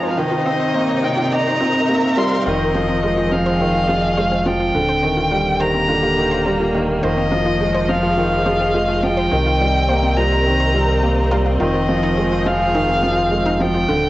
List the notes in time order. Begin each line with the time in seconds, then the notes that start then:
Already playing: F3 G#3 C4 D#4 G#4, riser
0.03 C5
0.10 F5
0.17 C3 D#3 C4 D#5
0.31 F4
0.46 C4 F4
0.74 A#3 A#4 C5
0.89 C4
1.03 C4 F4 G5
1.17 F4
1.32 D#4 A#5
1.46 C5
1.60 C4 F4
1.74 A#4
1.89 A#3 G4
2.17 G3 F4 C6
2.31 F5
2.46 F1 D#3 F3 F4 D#5
2.75 F3 C5
2.89 C4
3.03 G#3 F4
3.09 G#4
3.17 F4
3.32 F3 F5
3.46 C5 D#5
3.60 D#3 C4
3.74 F4
3.89 F3 F4
4.17 G#3 C5
4.32 C4
4.46 F3 F4 G5
4.60 F4
4.75 D#1 D3
4.88 C5
5.03 D#3 C4
5.17 A#3 F4
5.31 G3 F4
5.57 D#3 G4 C5 A#5
5.74 C4 D5
5.88 D3 F4
6.03 F4
6.18 D#3
6.31 C5
6.46 G3 C4
6.60 F4
6.74 D#3 F4
7.03 F1 D#3 F3 C5 D#5
7.17 C4
7.26 D#5
7.31 F3 F4
7.46 C4 F4
7.61 G#3
7.74 C5
7.89 F3 C4 F5
8.03 F4 G#4
8.17 D#3 F4
8.46 F3 C5
8.60 C4
8.74 G#3 F4
8.88 F4
9.03 F3 G5
9.17 C5
9.31 C2 C3 D#3 C4
9.46 F4
9.60 G3 F4 A#4
9.89 A#3 C5
10.03 C4
10.17 G3 F4 A#5
10.32 F4
10.46 D#3
10.60 C5
10.74 G3 F4
10.89 A#4
11.03 A#3 G4
11.31 G3 F4
11.46 F5
11.60 F1 D#3 F3 F4 D#5
11.74 F4
11.89 F3
12.03 D#4
12.14 G#3 C4 G#4
12.32 F4
12.46 F3 F4 F5
12.74 D#3 D#4
12.89 C4
13.03 F3 F4
13.17 F4
13.31 G#3
13.46 D#4
13.60 F3 C4 G5
13.74 F4
13.88 D#1 D3 F4
14.06 A#3